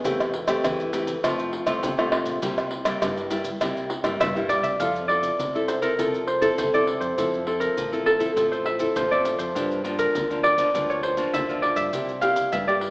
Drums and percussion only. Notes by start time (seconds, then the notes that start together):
0.05 pandeiro, maracas, surdo
0.20 pandeiro, tamborim, maracas, surdo
0.34 pandeiro
0.48 pandeiro, tamborim, maracas, surdo
0.64 pandeiro, tamborim, maracas, surdo
0.80 pandeiro, maracas
0.93 pandeiro, maracas
1.07 pandeiro, maracas, surdo
1.24 pandeiro, tamborim, maracas, surdo
1.39 pandeiro, maracas
1.53 pandeiro
1.67 pandeiro, tamborim, maracas
1.83 pandeiro, maracas, surdo
1.99 pandeiro, tamborim, maracas, surdo
2.12 pandeiro, tamborim
2.26 pandeiro, maracas, surdo
2.42 pandeiro, maracas, surdo
2.58 pandeiro, tamborim, maracas, surdo
2.71 pandeiro
2.85 pandeiro, tamborim, maracas, surdo
3.02 pandeiro, tamborim, maracas, surdo
3.17 pandeiro, maracas
3.31 pandeiro, maracas
3.44 pandeiro, maracas, surdo
3.61 pandeiro, tamborim, maracas, surdo
3.77 pandeiro, maracas
3.90 pandeiro
4.04 pandeiro, tamborim, maracas
4.21 pandeiro, tamborim, maracas, surdo
4.31 surdo
4.36 pandeiro, maracas
4.40 surdo
4.49 surdo, pandeiro, maracas
4.63 pandeiro, maracas, surdo
4.70 surdo
4.80 pandeiro, maracas, surdo
4.96 pandeiro, maracas, surdo
5.09 pandeiro
5.23 pandeiro, maracas, surdo
5.40 pandeiro, maracas, surdo
5.55 pandeiro, maracas
5.68 pandeiro, maracas
5.82 pandeiro, maracas, surdo
5.99 pandeiro, maracas, surdo
6.14 pandeiro, maracas
6.28 pandeiro
6.42 pandeiro, maracas
6.58 pandeiro, maracas, surdo
6.74 pandeiro, maracas, surdo
6.87 pandeiro
7.01 pandeiro, maracas, surdo
7.18 pandeiro, maracas, surdo
7.34 pandeiro, maracas, surdo
7.47 pandeiro
7.61 pandeiro, maracas, surdo
7.78 pandeiro, maracas, surdo
7.93 pandeiro, maracas
8.06 pandeiro
8.20 pandeiro, maracas, surdo
8.37 pandeiro, maracas, surdo
8.53 pandeiro, maracas
8.66 pandeiro
8.79 pandeiro, maracas
8.96 pandeiro, maracas, surdo
9.12 pandeiro, maracas, surdo
9.25 pandeiro, maracas
9.39 pandeiro, maracas, surdo
9.56 pandeiro, maracas, surdo
9.71 pandeiro, maracas, surdo
9.85 pandeiro, maracas
9.99 pandeiro, maracas, surdo
10.15 pandeiro, maracas, surdo
10.31 pandeiro, maracas
10.44 pandeiro
10.58 pandeiro, maracas, surdo
10.75 pandeiro, maracas, surdo
10.90 pandeiro, maracas
11.03 pandeiro
11.17 pandeiro, maracas
11.34 pandeiro, maracas, surdo
11.49 pandeiro, maracas
11.63 pandeiro
11.76 pandeiro, maracas, surdo
11.93 pandeiro, maracas, surdo
12.09 pandeiro, maracas, surdo
12.22 pandeiro, maracas
12.36 pandeiro, maracas, surdo
12.52 pandeiro, maracas, surdo
12.68 pandeiro, maracas
12.81 pandeiro